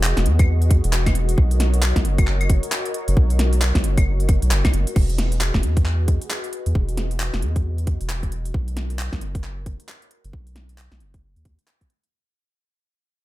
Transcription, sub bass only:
0.00 0.14 E1 loud
0.17 0.27 E1 medium
0.26 0.82 E2 medium
0.84 1.36 E1 loud
1.38 1.94 B1 loud
1.96 2.06 B1 medium
2.05 2.61 F#1 medium
3.08 3.16 F#1 loud
3.17 3.73 B1 loud
3.75 3.85 B1 medium
3.84 4.40 F#1 medium
4.42 4.53 B1 loud
4.51 4.63 F#1 loud
4.65 4.73 B1 medium
4.74 4.86 F#1 medium
4.96 5.52 E1 loud
5.54 5.65 E1 medium
5.63 6.19 E2 medium
6.66 6.74 E2 medium
6.75 7.31 E1 loud
7.34 7.44 E1 medium
7.42 7.98 E2 medium
8.01 8.53 E1 loud
8.54 9.10 B1 loud
9.13 9.23 B1 medium
9.21 9.77 F#1 medium
10.25 10.32 F#1 medium
10.33 10.89 B1 medium
10.92 11.02 B1 medium
11.01 11.36 F#1 medium
11.36 11.44 D#2 medium
11.45 11.57 D#2 medium

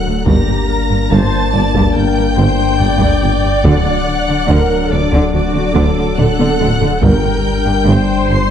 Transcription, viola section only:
0.00 0.27 A4 medium
0.26 0.68 G4 medium
0.69 1.11 A#4 medium
1.11 1.53 C5 loud
1.53 1.96 D5 medium
1.95 2.37 A#4 medium
2.38 2.80 C5 loud
2.80 4.46 D5 loud
4.49 4.92 A#4 loud
4.92 5.34 A4 medium
5.34 5.75 F#4 loud
5.77 7.03 A4 loud
7.04 7.88 A#4 loud
7.88 8.51 C5 loud

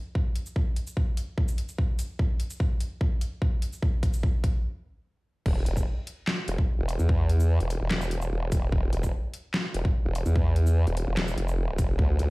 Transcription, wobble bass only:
5.46 5.65 E1 loud
5.66 5.85 E1 medium
6.48 6.57 E1 loud
6.79 6.98 E1 loud
6.99 7.59 E2 loud
7.60 7.79 E1 loud
7.81 7.89 E1 loud
7.91 8.30 E1 medium
8.32 8.71 E1 loud
8.72 8.91 E1 loud
8.93 9.12 E1 loud
9.74 9.83 E1 loud
10.05 10.24 E1 loud
10.26 10.85 E2 loud
10.87 11.06 E1 medium
11.07 11.16 E1 loud
11.17 11.36 E1 medium
11.38 11.77 F1 medium
11.78 11.97 F1 loud
11.99 12.18 D2 loud
12.19 12.30 D2 medium

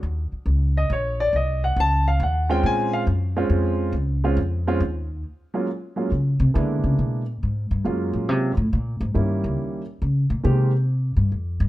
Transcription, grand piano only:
0.77 0.91 D#5 medium
0.93 1.20 C#5 medium
1.20 1.34 D5 medium
1.36 1.63 D#5 medium
1.64 1.77 F#5 medium
1.80 2.07 A5 loud
2.08 2.21 F5 medium
2.23 2.50 F#5 medium
2.49 3.04 G#3 medium
2.49 3.04 C4 medium
2.49 3.05 C#4 medium
2.49 3.05 F4 medium
2.49 2.64 G5 medium
2.66 2.93 G#5 loud
2.93 3.02 F5 medium
3.36 3.91 G#3 medium
3.36 3.91 C4 medium
3.36 3.91 C#4 medium
3.36 3.92 F4 medium
4.24 4.36 G#3 medium
4.24 4.37 C4 medium
4.24 4.36 C#4 medium
4.24 4.37 F4 medium
4.67 4.80 G#3 medium
4.67 4.80 C4 medium
4.67 4.80 C#4 medium
4.67 4.80 F4 medium
5.54 5.66 F#3 medium
5.54 5.66 G#3 medium
5.54 5.67 A#3 medium
5.54 5.67 C#4 medium
5.54 5.67 F4 medium
5.96 6.09 F#3 medium
5.96 6.09 G#3 soft
5.96 6.09 A#3 soft
5.96 6.09 C#4 soft
5.96 6.10 F4 medium
6.54 7.21 G#3 medium
6.54 7.21 A#3 soft
6.54 7.21 B3 soft
6.54 7.21 D4 soft
6.54 7.21 E4 medium
7.84 8.51 F#3 soft
7.84 8.51 G#3 medium
7.84 8.51 A#3 soft
7.84 8.51 C#4 soft
7.84 8.52 F4 medium
9.14 9.81 D#3 medium
9.14 9.81 G3 soft
9.14 9.81 A#3 soft
9.14 9.81 C#4 soft
9.14 9.81 E4 medium
10.43 10.70 D#3 medium
10.43 10.70 G#3 medium
10.43 10.70 A#3 medium
10.43 10.71 C4 medium
10.43 10.71 G4 medium

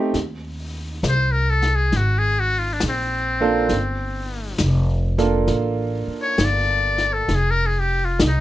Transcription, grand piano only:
0.00 0.11 A3 medium
0.00 0.11 C4 medium
0.00 0.11 D#4 medium
0.00 0.11 G4 medium
3.40 3.68 A#3 medium
3.40 3.68 D4 medium
3.40 3.68 F4 medium
3.40 3.68 A4 medium
5.18 5.46 A#3 medium
5.18 5.46 D4 soft
5.18 5.47 F4 medium
5.18 5.47 A4 medium

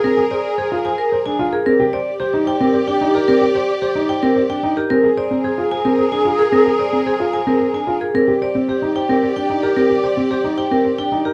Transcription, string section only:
0.00 1.48 G#4 medium
0.00 1.49 A#4 medium
1.66 4.73 G4 medium
1.66 4.73 D5 medium
4.90 7.97 G#4 medium
4.90 7.97 A#4 medium
8.15 11.21 G4 medium
8.15 11.21 D5 medium

